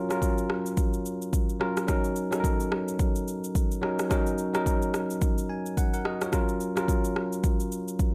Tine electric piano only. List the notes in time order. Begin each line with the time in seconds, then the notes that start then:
Already playing: F#3 C#4 F4 A#4
0.09 F#3 C#4 F4 A#4
1.59 F#3 C#4 F4 A#4
1.87 F#3 C#4 D#4 A#4
2.31 F#3 C#4 D#4 A4
2.40 A#4
3.82 F#3 C#4 D#4 A#4
4.09 F#3 C#4 D#4 A#4
4.53 F#3 C#4 D#4 A#4
5.50 G#5
5.77 F#5
5.93 A#4 F#5
6.05 F#4 D#5
6.21 F4 C#5
6.32 F#3 C#4 F4 A#4
6.76 F#3 C#4 F4 A#4